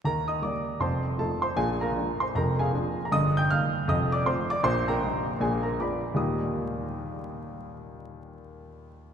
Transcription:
X:1
M:4/4
L:1/16
Q:"Swing" 1/4=157
K:Eb
V:1 name="Grand piano"
[Bb]2 [ee']2 [dd']4 [c=ac']4 [=Aa]2 [cc']2 | [Aa]2 [Bfb]4 [cc']2 [Bb]2 [Afa]4- [Afa] b | [ee']2 [gg']2 [ff']4 [ee']2 [dd']2 [cc']2 [dd']2 | [cc']2 [Bgb]6 [Aa]2 [Bb]2 [d_c'd']4 |
[E,,B,,G,B,EGe']16- | [E,,B,,G,B,EGe']16 |]
V:2 name="Grand piano" clef=bass
[E,,E,]4 [G,B,E]4 [F,,,F,,]4 [F,=A,E]4 | [B,,,B,,]4 [F,A,D]4 [F,,,F,,]4 [F,B,D]4 | [G,,,G,,]4 [E,B,E]4 [F,,,F,,]4 [F,=A,C]4 | [B,,,B,,]4 [G,B,E]4 [B,,,B,,]4 [A,_CF]4 |
z16 | z16 |]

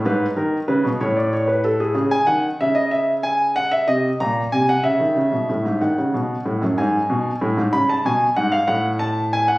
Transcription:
X:1
M:6/8
L:1/16
Q:3/8=62
K:C#phr
V:1 name="Grand piano"
B2 ^A2 B2 c d c B =A G | G g f2 e ^d e2 g2 f e | _e2 ^a2 g _g =e6 | f6 g6 |
b a g2 f ^e f2 a2 g f |]
V:2 name="Grand piano" clef=bass
G,,2 ^D,2 C, B,, A,,6 | C,2 ^D,2 C,8 | =C,2 ^A,,2 C,2 ^C, ^D, C, B,, =A,, G,, | ^D, C, B,,2 A,, F,, G,,2 B,,2 A,, G,, |
C,2 B,,2 G,,2 A,,6 |]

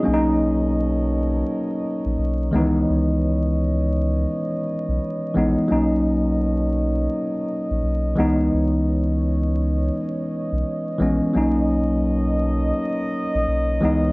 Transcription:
X:1
M:4/4
L:1/16
Q:"Swing 16ths" 1/4=85
K:B
V:1 name="French horn section"
[B,,Acd]12- [B,,Acd]2 [CBcd]2- | [CBcd]16 | [B,,Ac]12- [B,,Ac]2 [CBc]2- | [CBc]16 |
[B,,Acd]12- [B,,Acd]2 [CBc]2 |]
V:2 name="Tine electric piano"
[DG] z12 z3 | z16 | z16 | z16 |
z16 |]
V:3 name="Tine electric piano"
[F,A,C=D^D]6 z8 [D,E,G,B,D]2- | [D,E,G,B,D]4 z8 z2 [E,G,B,D]2 | [F,A,CD]6 z8 [E,G,B,D]2- | [E,G,B,D]4 z8 z2 [E,G,B,C]2 |
[F,A,CD]6 z8 [E,G,B,D]2 |]
V:4 name="Sub bass" clef=bass
B,,,8 z3 A,,, B,,,2 C,,2 | C,,8 z3 B,,, z2 A,,, z | B,,,8 z3 A,,, B,,,2 C,,2 | C,,8 z3 B,,, z2 A,,, z |
B,,,8 z3 A,,, B,,,2 C,,2 |]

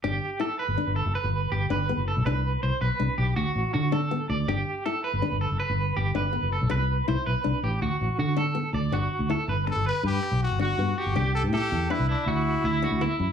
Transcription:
X:1
M:12/8
L:1/16
Q:3/8=108
K:G
V:1 name="Clean electric guitar"
G4 A2 B4 A2 B4 G2 B4 A2 | B4 c2 B4 G2 F4 F2 A4 d2 | G4 A2 B4 A2 B4 G2 B4 A2 | B4 c2 B4 G2 F4 F2 A4 d2 |
F4 A2 B2 z2 B4 z4 F4 F2 | G4 A4 B2 E2 F4 E2 F2 E4 |]
V:2 name="Trumpet"
z24 | z24 | z24 | z24 |
z8 A2 B2 G4 F2 F4 G2- | G2 A2 G4 E2 D2 E8- E2 z2 |]
V:3 name="Nylon-string guitar"
D4 E4 D4 z6 D2 B,4 | D4 z4 D4 z6 D2 B,4 | D4 E4 D4 z6 D2 B,4 | z4 E4 D4 z6 D2 B,4 |
D4 E4 D4 z6 D2 B,4 | D4 E4 D4 z6 D2 B,4 |]
V:4 name="Fingered electric bass" clef=bass
G,,,2 z4 z G,,, z G,,,2 F,,, z G,,,3 G,,,2 G,,,3 F,,,2 B,,, | C,,4 C,, z B,,, z C,, z B,,,2 D,, z A,,, z D,6 D,,2 | G,,,2 z4 z G,,, z G,,,2 F,,, z G,,,3 G,,,2 G,,,3 F,,,2 B,,, | C,,4 C,, z B,,, z C,, z A,,,2 D,, z A,,, z D,6 D,,2 |
G,,,2 z D,,2 z G,,,3 G,,,2 z G,,2 z B,,,2 G,,,3 G,,2 z G,,, | C,,3 A,,2 z E,,2 z C,,2 z D,,4 D,,3 D,,2 z F,, z |]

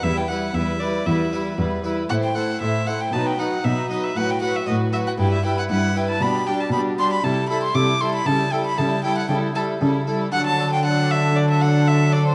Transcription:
X:1
M:4/4
L:1/16
Q:1/4=116
K:Em
V:1 name="Violin"
e g f2 e2 d2 e4 z4 | f g f2 e2 f g a g f2 e2 ^d e | f g f e ^d2 e f g e g f f2 g a | [K:Ador] b2 g a b2 c' b a2 b c' d'2 c' b |
a2 g b a2 g f g2 a2 z4 | f a2 g f2 e2 d e f2 e2 d c |]
V:2 name="Violin section"
B2 B2 B2 B2 B2 B2 B2 B2 | c2 c2 c2 c2 B2 B2 B2 B2 | B2 B2 B2 B2 B2 B2 B2 B2 | [K:Ador] G2 G2 G2 G2 A2 A2 A2 A2 |
A2 A2 A2 A2 A2 A2 A2 A2 | A4 A4 A8 |]
V:3 name="Harpsichord"
z2 [EB]4 [EB]2 z2 [EB]4 [EB]2 | z2 [A,Ec]4 [A,Ec]2 z2 [^DB]4 [DB]2 | z2 [FB]4 [FB]2 z2 [EB]4 [EB]2 | [K:Ador] z2 [DG]4 [DG]2 z2 [EA]4 [EA]2 |
z2 [EA]4 [EA]2 z2 [EA]4 [EA]2 | z2 [DA]4 [DA]2 z2 [DA]4 [DA]2 |]
V:4 name="Harpsichord" clef=bass
E,,4 E,,4 E,,4 E,,4 | A,,4 A,,4 B,,4 B,,4 | A,,4 A,,4 G,,4 G,,4 | [K:Ador] B,,4 B,,4 C,4 C,4 |
^C,4 C,4 C,4 C,4 | D,16 |]
V:5 name="Violin section"
E2 E2 E2 E2 E2 E2 E2 E2 | E2 E2 E2 E2 ^D2 D2 D2 D2 | F2 F2 F2 F2 E2 E2 E2 E2 | [K:Ador] D2 D2 D2 D2 E2 E2 E2 E2 |
E2 E2 E2 E2 E2 E2 E2 E2 | D4 D4 D8 |]
V:6 name="Viola section" clef=bass
G,2 G,2 G,2 G,2 G,2 G,2 G,2 G,2 | A,2 A,2 A,2 A,2 F,2 F,2 F,2 F,2 | F,2 F,2 F,2 F,2 G,2 G,2 G,2 G,2 | [K:Ador] G,2 G,2 G,2 G,2 G,2 G,2 G,2 G,2 |
G,2 G,2 G,2 G,2 G,2 G,2 G,2 G,2 | F,4 F,4 F,8 |]
V:7 name="Cello section" clef=bass
E,,4 E,,4 E,,4 E,,4 | A,,4 A,,4 B,,4 B,,4 | A,,4 A,,4 G,,4 G,,4 | [K:Ador] B,,4 B,,4 C,4 C,4 |
^C,4 C,4 C,4 C,4 | D,16 |]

